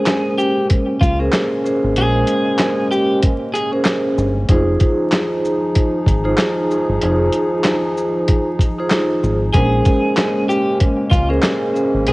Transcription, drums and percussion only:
0.06 snare loud
0.06 clap loud
0.06 closed hi-hat medium
0.39 shaker medium
0.70 kick medium
0.70 closed hi-hat loud
1.01 kick medium
1.01 closed hi-hat medium
1.01 shaker medium
1.32 snare loud
1.32 clap medium
1.32 closed hi-hat medium
1.66 shaker soft
1.96 closed hi-hat medium
2.27 closed hi-hat medium
2.27 shaker medium
2.58 snare loud
2.58 clap loud
2.58 closed hi-hat medium
2.92 shaker medium
3.23 kick medium
3.23 closed hi-hat loud
3.55 closed hi-hat medium
3.55 shaker medium
3.85 snare loud
3.85 clap medium
3.85 closed hi-hat medium
4.18 shaker soft
4.49 kick loud
4.49 closed hi-hat medium
4.80 kick loud
4.80 closed hi-hat medium
4.80 shaker medium
5.11 snare loud
5.11 clap medium
5.11 closed hi-hat medium
5.45 shaker medium
5.75 kick medium
5.75 closed hi-hat loud
6.06 kick medium
6.06 closed hi-hat medium
6.06 shaker medium
6.38 snare loud
6.38 clap loud
6.38 closed hi-hat medium
6.71 shaker soft
7.01 closed hi-hat medium
7.33 closed hi-hat medium
7.33 shaker medium
7.64 snare loud
7.64 clap loud
7.64 closed hi-hat medium
7.97 shaker medium
8.28 kick medium
8.28 closed hi-hat loud
8.59 kick medium
8.59 closed hi-hat medium
8.59 shaker medium
8.90 snare loud
8.90 clap medium
8.90 closed hi-hat medium
9.23 shaker soft
9.54 kick loud
9.54 closed hi-hat medium
9.85 kick loud
9.85 closed hi-hat medium
9.85 shaker medium
10.16 snare loud
10.16 clap loud
10.16 closed hi-hat medium
10.50 shaker medium
10.80 kick medium
10.80 closed hi-hat loud
11.12 kick medium
11.12 closed hi-hat medium
11.12 shaker medium
11.43 snare loud
11.43 clap medium
11.43 closed hi-hat medium
11.76 shaker soft
12.07 closed hi-hat medium

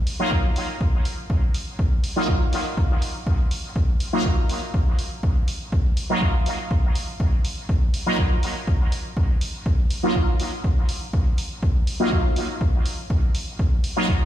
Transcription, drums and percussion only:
0.07 open hi-hat medium
0.31 kick loud
0.56 open hi-hat medium
0.81 kick loud
1.05 open hi-hat medium
1.30 kick loud
1.54 open hi-hat medium
1.79 kick loud
2.04 open hi-hat medium
2.28 kick loud
2.53 open hi-hat medium
2.77 kick loud
3.02 open hi-hat medium
3.27 kick loud
3.51 open hi-hat medium
3.76 kick loud
4.00 open hi-hat medium
4.25 kick loud
4.49 open hi-hat medium
4.74 kick loud
4.99 open hi-hat medium
5.23 kick loud
5.48 open hi-hat medium
5.72 kick loud
5.97 open hi-hat medium
6.22 kick loud
6.46 open hi-hat medium
6.71 kick loud
6.95 open hi-hat medium
7.20 kick loud
7.45 open hi-hat medium
7.69 kick loud
7.94 open hi-hat medium
8.18 kick loud
8.43 open hi-hat medium
8.67 kick loud
8.92 open hi-hat medium
9.17 kick loud
9.41 open hi-hat medium
9.66 kick loud
9.90 open hi-hat medium
10.15 kick loud
10.40 open hi-hat medium
10.64 kick loud
10.89 open hi-hat medium
11.13 kick loud
11.38 open hi-hat medium
11.63 kick loud
11.87 open hi-hat medium
12.12 kick loud
12.36 open hi-hat medium
12.61 kick loud
12.86 open hi-hat medium
13.10 kick loud
13.35 open hi-hat medium
13.59 kick loud
13.84 open hi-hat medium
14.09 kick loud

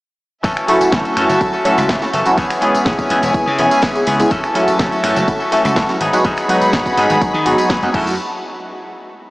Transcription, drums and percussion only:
0.44 kick loud
0.44 closed hi-hat medium
0.44 tambourine medium
0.57 finger snap medium
0.57 tambourine soft
0.68 open hi-hat loud
0.81 closed hi-hat medium
0.81 tambourine medium
0.92 kick loud
0.92 snare loud
0.92 closed hi-hat medium
0.92 tambourine medium
1.05 closed hi-hat soft
1.05 tambourine soft
1.17 finger snap medium
1.17 open hi-hat loud
1.30 closed hi-hat medium
1.30 tambourine medium
1.41 kick loud
1.41 closed hi-hat medium
1.53 tambourine soft
1.65 open hi-hat loud
1.78 closed hi-hat medium
1.78 tambourine medium
1.89 kick loud
1.89 snare loud
1.89 closed hi-hat medium
1.89 tambourine medium
2.02 snare soft
2.02 closed hi-hat soft
2.02 tambourine soft
2.13 open hi-hat loud
2.25 closed hi-hat medium
2.25 tambourine medium
2.38 kick loud
2.38 closed hi-hat medium
2.38 tambourine medium
2.50 finger snap medium
2.50 open hi-hat medium
2.50 tambourine soft
2.62 open hi-hat loud
2.75 closed hi-hat medium
2.75 tambourine medium
2.86 kick loud
2.86 snare loud
2.86 closed hi-hat medium
2.86 tambourine medium
2.99 kick medium
2.99 closed hi-hat soft
2.99 tambourine soft
3.10 open hi-hat loud
3.23 closed hi-hat medium
3.23 tambourine medium
3.34 kick loud
3.34 closed hi-hat medium
3.34 tambourine medium
3.47 tambourine soft
3.59 open hi-hat loud
3.71 closed hi-hat medium
3.71 tambourine medium
3.82 kick loud
3.82 snare loud
3.82 closed hi-hat medium
3.82 tambourine medium
3.95 closed hi-hat soft
3.95 tambourine soft
4.07 open hi-hat loud
4.19 closed hi-hat medium
4.19 tambourine medium
4.31 kick loud
4.31 closed hi-hat medium
4.31 tambourine medium
4.44 finger snap medium
4.44 tambourine soft
4.55 open hi-hat loud
4.68 closed hi-hat medium
4.68 tambourine medium
4.79 kick loud
4.79 snare loud
4.79 closed hi-hat medium
4.79 tambourine medium
4.92 closed hi-hat soft
4.92 tambourine soft
5.04 finger snap medium
5.04 open hi-hat loud
5.16 closed hi-hat soft
5.16 tambourine medium
5.28 kick loud
5.28 closed hi-hat medium
5.28 tambourine medium
5.40 tambourine soft
5.52 open hi-hat loud
5.65 closed hi-hat medium
5.65 tambourine medium
5.76 kick loud
5.76 snare loud
5.76 closed hi-hat medium
5.76 tambourine medium
5.89 snare soft
5.89 closed hi-hat soft
5.89 tambourine soft
6.01 open hi-hat loud
6.13 closed hi-hat medium
6.13 tambourine medium
6.24 kick loud
6.24 closed hi-hat medium
6.24 tambourine medium
6.37 finger snap medium
6.37 open hi-hat medium
6.37 tambourine soft
6.49 open hi-hat loud
6.61 closed hi-hat soft
6.61 tambourine medium
6.73 kick loud
6.73 snare loud
6.73 closed hi-hat medium
6.73 tambourine medium
6.86 kick medium
6.86 closed hi-hat soft
6.86 tambourine soft
6.98 open hi-hat loud
7.10 closed hi-hat medium
7.10 tambourine medium
7.21 kick loud
7.21 closed hi-hat medium
7.21 tambourine medium
7.34 tambourine soft
7.46 open hi-hat loud
7.58 closed hi-hat soft
7.58 tambourine medium
7.70 kick loud
7.70 snare loud
7.70 closed hi-hat medium
7.82 closed hi-hat soft
7.82 tambourine soft
7.94 kick loud
7.94 crash medium
8.07 tambourine medium

